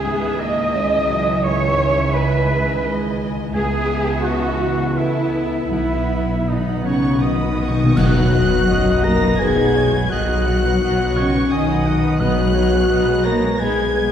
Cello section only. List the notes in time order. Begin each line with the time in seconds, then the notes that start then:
Already playing: G#4
0.41 D#5
1.44 C#5
2.14 B4
3.55 G#4
4.25 F#4
4.97 E4
5.71 E4
6.48 D#4
6.85 C#3
7.22 D#3
7.97 F#3
9.04 A#3
9.40 G#3
10.11 F#3
11.17 C#3
11.52 D#3
12.21 F#3
13.25 A#3
13.60 G#3